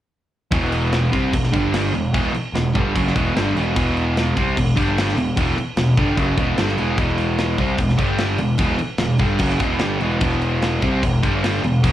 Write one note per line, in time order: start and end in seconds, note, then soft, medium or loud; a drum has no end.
0.51 1.09 E1 loud
0.51 1.12 E2 medium
0.51 1.11 B2 medium
0.51 1.12 E3 medium
0.51 kick loud
0.51 crash medium
0.72 crash medium
0.92 snare loud
0.92 crash medium
1.12 1.32 C2 medium
1.12 1.32 C3 loud
1.12 1.32 G3 loud
1.12 1.32 C4 loud
1.12 kick medium
1.12 crash medium
1.33 1.52 E1 medium
1.33 1.49 E2 medium
1.33 1.49 B2 medium
1.33 kick loud
1.33 crash medium
1.44 snare soft
1.53 1.91 G1 medium
1.53 1.93 G2 medium
1.53 1.93 D3 loud
1.53 1.93 G3 loud
1.53 kick loud
1.53 crash medium
1.74 snare loud
1.74 crash medium
1.94 2.13 E1 medium
1.94 2.10 E2 medium
1.94 2.10 B2 medium
1.94 crash medium
2.13 2.33 E1 medium
2.13 2.33 E2 medium
2.13 2.34 B2 loud
2.13 2.34 E3 medium
2.13 kick loud
2.13 crash medium
2.33 muted picked electric bass stroke soft
2.33 muted overdriven electric guitar stroke medium
2.33 crash medium
2.53 2.73 E1 medium
2.53 2.71 E2 medium
2.53 2.71 B2 medium
2.53 snare loud
2.53 crash medium
2.75 2.94 G1 loud
2.75 2.94 G2 loud
2.75 2.94 D3 loud
2.75 2.95 G3 loud
2.75 kick medium
2.75 crash medium
2.95 3.14 F#1 medium
2.95 3.14 F#2 medium
2.95 3.15 C#3 loud
2.95 3.15 F#3 loud
2.95 kick medium
2.95 crash medium
3.07 snare soft
3.15 3.34 E1 medium
3.15 3.34 E2 medium
3.15 3.35 B2 loud
3.15 3.35 E3 loud
3.15 kick medium
3.15 crash medium
3.35 3.54 G1 medium
3.35 3.55 G2 loud
3.35 3.55 D3 loud
3.35 3.55 G3 loud
3.35 snare loud
3.35 crash medium
3.56 3.74 E1 medium
3.56 3.74 E2 medium
3.56 3.75 B2 medium
3.56 3.75 E3 loud
3.56 crash medium
3.75 4.32 E1 loud
3.75 4.35 E2 loud
3.75 4.36 B2 loud
3.75 4.36 E3 loud
3.75 kick loud
3.75 crash medium
3.97 crash medium
4.17 snare loud
4.17 crash medium
4.37 4.55 C2 medium
4.37 4.56 C3 medium
4.37 4.56 G3 loud
4.37 4.56 C4 loud
4.37 kick medium
4.37 crash medium
4.56 4.76 E1 medium
4.56 4.72 E2 medium
4.56 4.73 B2 medium
4.56 kick medium
4.56 crash medium
4.76 5.14 G1 medium
4.76 5.16 G2 medium
4.76 5.16 D3 loud
4.76 5.16 G3 loud
4.76 kick medium
4.76 crash medium
4.98 snare loud
4.98 crash medium
5.09 snare soft
5.16 5.35 E1 medium
5.16 5.33 E2 medium
5.16 5.33 B2 medium
5.16 crash medium
5.37 5.56 E1 medium
5.37 5.56 E2 medium
5.37 5.57 B2 loud
5.37 5.57 E3 loud
5.37 kick loud
5.37 crash medium
5.57 muted picked electric bass stroke soft
5.57 muted overdriven electric guitar stroke soft
5.57 crash medium
5.77 5.96 E1 medium
5.77 5.94 E2 medium
5.77 5.94 B2 medium
5.77 snare loud
5.77 crash medium
5.97 6.16 G1 medium
5.97 6.17 G2 medium
5.97 6.17 D3 loud
5.97 6.18 G3 loud
5.97 kick medium
5.97 crash medium
6.17 6.36 F#1 loud
6.17 6.37 F#2 medium
6.17 6.37 C#3 medium
6.17 6.37 F#3 medium
6.17 kick medium
6.17 crash medium
6.37 6.56 E1 medium
6.37 6.57 E2 medium
6.37 6.58 B2 loud
6.37 6.58 E3 loud
6.37 kick medium
6.37 crash medium
6.57 6.76 G1 medium
6.57 6.78 G2 medium
6.57 6.78 D3 loud
6.57 6.78 G3 loud
6.57 snare loud
6.57 crash medium
6.68 snare soft
6.77 6.96 E1 medium
6.77 6.97 E2 medium
6.77 6.98 B2 medium
6.77 6.98 E3 loud
6.77 crash medium
6.98 7.55 E1 loud
6.98 7.58 E2 loud
6.98 7.58 B2 loud
6.98 7.59 E3 medium
6.98 kick loud
6.98 crash medium
7.18 crash medium
7.38 snare loud
7.38 crash medium
7.58 7.77 C2 medium
7.58 7.78 C3 medium
7.58 7.79 G3 loud
7.58 7.79 C4 loud
7.58 kick medium
7.58 crash medium
7.78 7.97 E1 medium
7.78 7.95 E2 medium
7.78 7.95 B2 medium
7.78 kick medium
7.78 crash medium
7.89 snare soft
7.98 8.36 G1 medium
7.98 8.38 G2 loud
7.98 8.38 D3 medium
7.98 8.39 G3 loud
7.98 kick medium
7.98 crash medium
8.18 snare loud
8.18 crash medium
8.38 8.58 E1 medium
8.38 8.55 E2 medium
8.38 8.55 B2 medium
8.38 crash medium
8.58 8.78 E1 loud
8.58 8.78 E2 medium
8.58 8.79 B2 loud
8.58 8.79 E3 loud
8.58 kick loud
8.58 crash medium
8.78 muted picked electric bass stroke soft
8.78 muted overdriven electric guitar stroke medium
8.78 crash medium
8.98 9.18 E1 medium
8.98 9.16 E2 medium
8.98 9.16 B2 medium
8.98 snare loud
8.98 crash medium
9.19 9.39 G1 loud
9.19 9.39 G2 loud
9.19 9.39 D3 loud
9.19 9.40 G3 loud
9.19 kick medium
9.19 crash medium
9.39 9.59 F#1 medium
9.39 9.60 F#2 medium
9.39 9.60 C#3 loud
9.39 9.60 F#3 loud
9.39 kick medium
9.39 crash medium
9.50 snare soft
9.59 9.79 E1 medium
9.59 9.80 E2 medium
9.59 9.80 B2 loud
9.59 9.81 E3 loud
9.59 kick medium
9.59 crash medium
9.79 9.99 G1 medium
9.79 10.00 G2 loud
9.79 10.01 D3 loud
9.79 10.01 G3 loud
9.79 snare loud
9.79 crash medium
10.00 10.19 E1 medium
10.00 10.19 E2 medium
10.00 10.20 B2 loud
10.00 10.20 E3 loud
10.00 crash medium
10.20 10.78 E1 medium
10.20 10.81 E2 medium
10.20 10.81 B2 loud
10.20 10.82 E3 loud
10.20 kick loud
10.20 crash medium
10.42 crash medium
10.62 snare loud
10.62 crash medium
10.82 11.01 C2 medium
10.82 11.02 C3 medium
10.82 11.02 G3 loud
10.82 11.03 C4 loud
10.82 kick medium
10.82 crash medium
11.03 11.22 E1 medium
11.03 11.20 E2 medium
11.03 11.19 B2 medium
11.03 kick medium
11.03 crash medium
11.23 11.61 G1 medium
11.23 11.63 G2 loud
11.23 11.63 D3 loud
11.23 11.63 G3 loud
11.23 kick medium
11.23 crash medium
11.44 snare loud
11.44 crash medium
11.63 11.82 E1 medium
11.63 11.80 E2 medium
11.63 11.80 B2 medium
11.63 crash medium
11.83 11.92 E1 loud
11.83 11.92 E2 medium
11.83 11.92 B2 medium
11.83 11.92 E3 loud
11.83 kick loud
11.83 crash medium